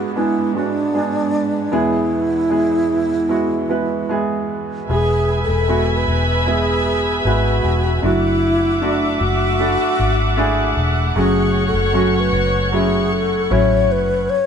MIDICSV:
0, 0, Header, 1, 5, 480
1, 0, Start_track
1, 0, Tempo, 789474
1, 1045, Time_signature, 4, 2, 24, 8
1, 3937, Tempo, 782269
1, 8838, End_track
2, 0, Start_track
2, 0, Title_t, "String section"
2, 0, Program_c, 0, 48
2, 0, Note_on_c, 0, 44, 61
2, 0, Note_on_c, 0, 56, 51
2, 0, Note_on_c, 0, 59, 53
2, 0, Note_on_c, 0, 62, 58
2, 1017, Note_off_c, 0, 62, 0
2, 1025, Note_off_c, 0, 44, 0
2, 1043, Note_on_c, 0, 52, 57
2, 1045, Note_on_c, 0, 40, 63
2, 2949, Note_off_c, 0, 59, 0
2, 2951, Note_off_c, 0, 56, 0
2, 2956, Note_off_c, 0, 52, 0
2, 2957, Note_off_c, 0, 40, 0
2, 2975, Note_on_c, 0, 76, 55
2, 2979, Note_on_c, 0, 71, 58
2, 2980, Note_on_c, 0, 80, 62
2, 2981, Note_on_c, 0, 83, 63
2, 4876, Note_off_c, 0, 76, 0
2, 4878, Note_off_c, 0, 71, 0
2, 4879, Note_off_c, 0, 80, 0
2, 4880, Note_off_c, 0, 83, 0
2, 4890, Note_on_c, 0, 78, 61
2, 4892, Note_on_c, 0, 57, 61
2, 4892, Note_on_c, 0, 76, 61
2, 4893, Note_on_c, 0, 86, 71
2, 6790, Note_off_c, 0, 76, 0
2, 6790, Note_off_c, 0, 86, 0
2, 6806, Note_on_c, 0, 85, 74
2, 6809, Note_on_c, 0, 73, 64
2, 8710, Note_off_c, 0, 78, 0
2, 8711, Note_off_c, 0, 57, 0
2, 8716, Note_off_c, 0, 85, 0
2, 8717, Note_off_c, 0, 73, 0
2, 8838, End_track
3, 0, Start_track
3, 0, Title_t, "Alto flute"
3, 0, Program_c, 1, 73
3, 0, Note_on_c, 1, 66, 85
3, 70, Note_off_c, 1, 66, 0
3, 101, Note_on_c, 1, 64, 76
3, 317, Note_off_c, 1, 64, 0
3, 340, Note_on_c, 1, 62, 87
3, 1051, Note_on_c, 1, 64, 84
3, 1061, Note_off_c, 1, 62, 0
3, 2495, Note_off_c, 1, 64, 0
3, 2982, Note_on_c, 1, 68, 89
3, 3277, Note_off_c, 1, 68, 0
3, 3306, Note_on_c, 1, 69, 80
3, 3630, Note_on_c, 1, 71, 72
3, 3639, Note_off_c, 1, 69, 0
3, 3942, Note_on_c, 1, 68, 80
3, 3951, Note_off_c, 1, 71, 0
3, 4424, Note_on_c, 1, 66, 69
3, 4434, Note_off_c, 1, 68, 0
3, 4896, Note_off_c, 1, 66, 0
3, 4900, Note_on_c, 1, 64, 90
3, 5377, Note_on_c, 1, 62, 73
3, 5387, Note_off_c, 1, 64, 0
3, 5614, Note_on_c, 1, 66, 83
3, 5623, Note_off_c, 1, 62, 0
3, 6571, Note_off_c, 1, 66, 0
3, 6811, Note_on_c, 1, 68, 82
3, 7107, Note_off_c, 1, 68, 0
3, 7128, Note_on_c, 1, 69, 86
3, 7451, Note_on_c, 1, 71, 87
3, 7460, Note_off_c, 1, 69, 0
3, 7771, Note_off_c, 1, 71, 0
3, 7775, Note_on_c, 1, 68, 74
3, 8018, Note_on_c, 1, 69, 85
3, 8027, Note_off_c, 1, 68, 0
3, 8257, Note_on_c, 1, 73, 83
3, 8266, Note_off_c, 1, 69, 0
3, 8504, Note_on_c, 1, 71, 89
3, 8513, Note_off_c, 1, 73, 0
3, 8737, Note_on_c, 1, 73, 103
3, 8746, Note_off_c, 1, 71, 0
3, 8838, Note_off_c, 1, 73, 0
3, 8838, End_track
4, 0, Start_track
4, 0, Title_t, "Grand piano"
4, 0, Program_c, 2, 0
4, 0, Control_c, 2, 64, 127
4, 0, Note_on_c, 2, 44, 59
4, 0, Note_on_c, 2, 56, 63
4, 0, Note_on_c, 2, 59, 50
4, 0, Note_on_c, 2, 62, 51
4, 0, Note_on_c, 2, 64, 67
4, 0, Note_on_c, 2, 68, 93
4, 72, Note_off_c, 2, 56, 0
4, 74, Note_off_c, 2, 59, 0
4, 76, Note_off_c, 2, 62, 0
4, 77, Note_off_c, 2, 64, 0
4, 97, Note_on_c, 2, 56, 57
4, 102, Note_on_c, 2, 59, 54
4, 103, Note_on_c, 2, 62, 50
4, 106, Note_off_c, 2, 68, 0
4, 106, Note_on_c, 2, 68, 59
4, 320, Note_off_c, 2, 56, 0
4, 322, Note_off_c, 2, 59, 0
4, 323, Note_off_c, 2, 62, 0
4, 324, Note_off_c, 2, 68, 0
4, 331, Note_on_c, 2, 56, 49
4, 335, Note_on_c, 2, 59, 42
4, 337, Note_on_c, 2, 62, 46
4, 342, Note_on_c, 2, 66, 54
4, 556, Note_off_c, 2, 56, 0
4, 558, Note_off_c, 2, 59, 0
4, 559, Note_off_c, 2, 62, 0
4, 561, Note_off_c, 2, 66, 0
4, 570, Note_on_c, 2, 56, 52
4, 573, Note_on_c, 2, 59, 54
4, 576, Note_on_c, 2, 62, 50
4, 578, Note_on_c, 2, 68, 62
4, 1022, Note_off_c, 2, 56, 0
4, 1023, Note_off_c, 2, 44, 0
4, 1024, Note_off_c, 2, 59, 0
4, 1025, Note_off_c, 2, 62, 0
4, 1026, Note_off_c, 2, 68, 0
4, 1044, Note_on_c, 2, 56, 65
4, 1045, Note_on_c, 2, 59, 68
4, 1048, Note_on_c, 2, 40, 50
4, 1049, Note_on_c, 2, 47, 49
4, 1049, Note_on_c, 2, 64, 69
4, 1051, Control_c, 2, 64, 0
4, 1051, Note_on_c, 2, 68, 74
4, 1154, Control_c, 2, 64, 127
4, 1499, Note_off_c, 2, 56, 0
4, 1500, Note_off_c, 2, 59, 0
4, 1501, Note_off_c, 2, 64, 0
4, 1503, Note_off_c, 2, 68, 0
4, 1519, Note_on_c, 2, 56, 58
4, 1522, Note_on_c, 2, 59, 50
4, 1526, Note_on_c, 2, 64, 50
4, 1529, Note_on_c, 2, 68, 64
4, 1979, Note_off_c, 2, 56, 0
4, 1980, Note_off_c, 2, 59, 0
4, 1983, Note_off_c, 2, 64, 0
4, 1984, Note_off_c, 2, 68, 0
4, 2001, Note_on_c, 2, 56, 60
4, 2002, Note_on_c, 2, 59, 54
4, 2004, Note_on_c, 2, 64, 55
4, 2011, Note_on_c, 2, 66, 67
4, 2233, Note_off_c, 2, 56, 0
4, 2234, Note_off_c, 2, 59, 0
4, 2235, Note_off_c, 2, 64, 0
4, 2238, Note_off_c, 2, 66, 0
4, 2244, Note_on_c, 2, 56, 56
4, 2248, Note_on_c, 2, 59, 52
4, 2252, Note_on_c, 2, 64, 55
4, 2254, Note_on_c, 2, 71, 58
4, 2478, Note_off_c, 2, 56, 0
4, 2480, Note_off_c, 2, 59, 0
4, 2482, Note_off_c, 2, 64, 0
4, 2483, Note_off_c, 2, 71, 0
4, 2487, Note_on_c, 2, 56, 59
4, 2490, Note_on_c, 2, 59, 58
4, 2494, Note_on_c, 2, 64, 59
4, 2497, Note_on_c, 2, 68, 72
4, 2950, Note_off_c, 2, 56, 0
4, 2951, Note_off_c, 2, 59, 0
4, 2953, Note_off_c, 2, 40, 0
4, 2953, Note_off_c, 2, 64, 0
4, 2954, Note_off_c, 2, 47, 0
4, 2955, Note_off_c, 2, 68, 0
4, 2973, Note_on_c, 2, 56, 51
4, 2976, Note_on_c, 2, 47, 45
4, 2976, Note_on_c, 2, 59, 49
4, 2977, Note_on_c, 2, 64, 45
4, 2981, Note_on_c, 2, 68, 59
4, 2985, Control_c, 2, 64, 0
4, 3092, Control_c, 2, 64, 127
4, 3430, Note_off_c, 2, 56, 0
4, 3432, Note_off_c, 2, 59, 0
4, 3432, Note_off_c, 2, 64, 0
4, 3434, Note_off_c, 2, 68, 0
4, 3453, Note_on_c, 2, 56, 56
4, 3456, Note_on_c, 2, 59, 52
4, 3458, Note_on_c, 2, 64, 52
4, 3462, Note_on_c, 2, 66, 66
4, 3672, Note_off_c, 2, 47, 0
4, 3910, Note_off_c, 2, 56, 0
4, 3912, Note_off_c, 2, 59, 0
4, 3913, Note_off_c, 2, 64, 0
4, 3915, Note_off_c, 2, 66, 0
4, 3930, Note_on_c, 2, 56, 54
4, 3932, Note_on_c, 2, 59, 46
4, 3936, Note_on_c, 2, 64, 51
4, 3938, Note_on_c, 2, 68, 59
4, 4390, Note_off_c, 2, 56, 0
4, 4391, Note_off_c, 2, 59, 0
4, 4392, Note_off_c, 2, 64, 0
4, 4394, Note_off_c, 2, 68, 0
4, 4414, Note_on_c, 2, 56, 59
4, 4419, Note_on_c, 2, 59, 53
4, 4421, Note_on_c, 2, 64, 53
4, 4425, Note_on_c, 2, 71, 67
4, 4871, Note_off_c, 2, 56, 0
4, 4873, Note_off_c, 2, 59, 0
4, 4875, Note_off_c, 2, 64, 0
4, 4877, Note_off_c, 2, 71, 0
4, 4885, Note_on_c, 2, 57, 59
4, 4886, Note_on_c, 2, 62, 53
4, 4888, Note_on_c, 2, 54, 50
4, 4892, Note_on_c, 2, 66, 61
4, 4893, Note_on_c, 2, 64, 51
4, 4905, Control_c, 2, 64, 0
4, 5021, Control_c, 2, 64, 127
4, 5347, Note_off_c, 2, 57, 0
4, 5347, Note_off_c, 2, 62, 0
4, 5351, Note_off_c, 2, 64, 0
4, 5351, Note_off_c, 2, 66, 0
4, 5371, Note_on_c, 2, 57, 62
4, 5376, Note_on_c, 2, 62, 56
4, 5376, Note_on_c, 2, 64, 56
4, 5379, Note_on_c, 2, 66, 67
4, 5588, Note_off_c, 2, 54, 0
4, 5830, Note_off_c, 2, 57, 0
4, 5832, Note_off_c, 2, 62, 0
4, 5832, Note_off_c, 2, 64, 0
4, 5834, Note_off_c, 2, 66, 0
4, 5850, Note_on_c, 2, 57, 58
4, 5854, Note_on_c, 2, 62, 54
4, 5856, Note_on_c, 2, 64, 52
4, 5858, Note_on_c, 2, 69, 64
4, 6307, Note_off_c, 2, 57, 0
4, 6309, Note_off_c, 2, 62, 0
4, 6310, Note_off_c, 2, 64, 0
4, 6311, Note_off_c, 2, 69, 0
4, 6328, Note_on_c, 2, 57, 73
4, 6328, Note_on_c, 2, 62, 70
4, 6332, Note_on_c, 2, 64, 72
4, 6336, Note_on_c, 2, 68, 74
4, 6784, Note_off_c, 2, 57, 0
4, 6784, Note_off_c, 2, 62, 0
4, 6786, Note_off_c, 2, 64, 0
4, 6788, Note_off_c, 2, 68, 0
4, 6809, Note_on_c, 2, 54, 65
4, 6811, Note_on_c, 2, 57, 55
4, 6812, Note_on_c, 2, 49, 52
4, 6815, Note_on_c, 2, 61, 57
4, 6819, Note_on_c, 2, 66, 64
4, 6820, Control_c, 2, 64, 0
4, 6911, Control_c, 2, 64, 127
4, 7265, Note_off_c, 2, 54, 0
4, 7266, Note_off_c, 2, 57, 0
4, 7268, Note_off_c, 2, 61, 0
4, 7270, Note_off_c, 2, 66, 0
4, 7286, Note_on_c, 2, 54, 66
4, 7287, Note_on_c, 2, 57, 57
4, 7292, Note_on_c, 2, 61, 60
4, 7295, Note_on_c, 2, 66, 68
4, 7506, Note_off_c, 2, 49, 0
4, 7745, Note_off_c, 2, 54, 0
4, 7745, Note_off_c, 2, 57, 0
4, 7748, Note_off_c, 2, 61, 0
4, 7749, Note_off_c, 2, 66, 0
4, 7770, Note_on_c, 2, 54, 68
4, 7775, Note_on_c, 2, 57, 56
4, 7777, Note_on_c, 2, 61, 57
4, 7779, Note_on_c, 2, 64, 65
4, 8229, Note_off_c, 2, 54, 0
4, 8232, Note_off_c, 2, 57, 0
4, 8233, Note_off_c, 2, 61, 0
4, 8234, Note_off_c, 2, 64, 0
4, 8249, Note_on_c, 2, 54, 65
4, 8250, Note_on_c, 2, 57, 63
4, 8255, Note_on_c, 2, 61, 58
4, 8258, Note_on_c, 2, 64, 75
4, 8711, Note_off_c, 2, 54, 0
4, 8712, Note_off_c, 2, 57, 0
4, 8714, Note_off_c, 2, 61, 0
4, 8715, Note_off_c, 2, 64, 0
4, 8746, Control_c, 2, 64, 0
4, 8838, End_track
5, 0, Start_track
5, 0, Title_t, "Fingered electric bass"
5, 0, Program_c, 3, 33
5, 2976, Note_on_c, 3, 28, 76
5, 3311, Note_off_c, 3, 28, 0
5, 3333, Note_on_c, 3, 28, 88
5, 3671, Note_off_c, 3, 28, 0
5, 3696, Note_on_c, 3, 28, 69
5, 4392, Note_off_c, 3, 28, 0
5, 4412, Note_on_c, 3, 32, 77
5, 4637, Note_off_c, 3, 32, 0
5, 4653, Note_on_c, 3, 28, 76
5, 4878, Note_off_c, 3, 28, 0
5, 4895, Note_on_c, 3, 30, 87
5, 5592, Note_off_c, 3, 30, 0
5, 5614, Note_on_c, 3, 30, 71
5, 5950, Note_off_c, 3, 30, 0
5, 6096, Note_on_c, 3, 32, 72
5, 6548, Note_off_c, 3, 32, 0
5, 6572, Note_on_c, 3, 28, 75
5, 6794, Note_off_c, 3, 28, 0
5, 6812, Note_on_c, 3, 30, 87
5, 7146, Note_off_c, 3, 30, 0
5, 7169, Note_on_c, 3, 30, 97
5, 7505, Note_off_c, 3, 30, 0
5, 7526, Note_on_c, 3, 30, 82
5, 8228, Note_off_c, 3, 30, 0
5, 8254, Note_on_c, 3, 33, 81
5, 8496, Note_off_c, 3, 33, 0
5, 8496, Note_on_c, 3, 30, 76
5, 8720, Note_off_c, 3, 30, 0
5, 8838, End_track
0, 0, End_of_file